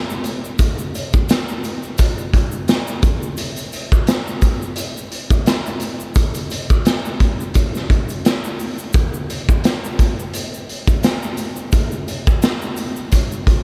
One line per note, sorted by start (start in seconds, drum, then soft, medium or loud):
0.10 shaker medium
0.24 closed hi-hat medium
0.24 shaker medium
0.45 shaker soft
0.59 kick loud
0.59 closed hi-hat medium
0.59 shaker medium
0.79 shaker soft
0.95 closed hi-hat medium
0.95 shaker soft
1.13 kick loud
1.13 shaker soft
1.29 snare loud
1.29 closed hi-hat medium
1.29 shaker medium
1.48 shaker soft
1.64 closed hi-hat medium
1.64 shaker soft
1.83 shaker soft
1.98 kick medium
1.98 closed hi-hat medium
1.98 shaker medium
2.18 shaker soft
2.33 kick medium
2.33 closed hi-hat medium
2.52 shaker soft
2.68 snare loud
2.68 closed hi-hat medium
2.68 shaker medium
2.88 shaker medium
3.02 kick loud
3.02 closed hi-hat medium
3.02 shaker soft
3.23 shaker soft
3.37 closed hi-hat medium
3.37 shaker medium
3.56 closed hi-hat medium
3.56 shaker soft
3.72 closed hi-hat medium
3.72 shaker soft
3.92 kick medium
3.92 shaker soft
4.07 snare loud
4.07 closed hi-hat medium
4.07 shaker medium
4.27 shaker soft
4.42 kick medium
4.42 closed hi-hat medium
4.42 shaker soft
4.62 shaker soft
4.76 closed hi-hat medium
4.76 shaker medium
4.97 shaker soft
5.12 closed hi-hat medium
5.30 kick loud
5.30 closed hi-hat soft
5.30 shaker soft
5.46 snare loud
5.46 closed hi-hat medium
5.46 shaker medium
5.66 shaker soft
5.80 closed hi-hat medium
5.80 shaker soft
6.00 shaker soft
6.15 kick loud
6.15 closed hi-hat medium
6.15 shaker medium
6.35 closed hi-hat medium
6.35 shaker medium
6.50 closed hi-hat medium
6.50 shaker soft
6.70 kick medium
6.70 shaker soft
6.85 snare loud
6.85 closed hi-hat medium
6.85 shaker medium
7.05 shaker soft
7.20 kick medium
7.20 closed hi-hat medium
7.40 shaker soft
7.54 kick medium
7.54 closed hi-hat medium
7.54 shaker medium
7.75 snare soft
7.75 shaker soft
7.90 kick medium
7.90 closed hi-hat medium
8.09 closed hi-hat soft
8.09 shaker soft
8.25 snare loud
8.25 closed hi-hat medium
8.25 shaker medium
8.44 shaker medium
8.59 open hi-hat medium
8.59 shaker soft
8.78 shaker soft
8.93 kick loud
8.93 closed hi-hat medium
8.93 shaker medium
9.14 shaker medium
9.30 closed hi-hat medium
9.30 shaker soft
9.49 kick medium
9.49 shaker soft
9.64 snare loud
9.64 closed hi-hat medium
9.64 shaker medium
9.84 shaker soft
9.99 kick medium
9.99 closed hi-hat medium
9.99 shaker soft
10.19 shaker soft
10.34 closed hi-hat medium
10.34 shaker medium
10.54 shaker soft
10.69 closed hi-hat medium
10.87 kick medium
10.87 closed hi-hat soft
10.87 shaker soft
11.03 snare loud
11.03 closed hi-hat medium
11.03 shaker medium
11.23 shaker soft
11.37 closed hi-hat medium
11.37 shaker soft
11.56 shaker soft
11.72 kick medium
11.72 closed hi-hat medium
11.72 shaker medium
11.92 shaker soft
12.08 closed hi-hat medium
12.08 shaker soft
12.27 kick loud
12.27 shaker soft
12.42 snare loud
12.42 closed hi-hat medium
12.42 shaker medium
12.62 shaker soft
12.77 closed hi-hat medium
12.77 shaker soft
12.96 shaker soft
13.12 kick medium
13.12 closed hi-hat medium
13.12 shaker medium
13.32 shaker soft
13.47 kick medium
13.47 closed hi-hat medium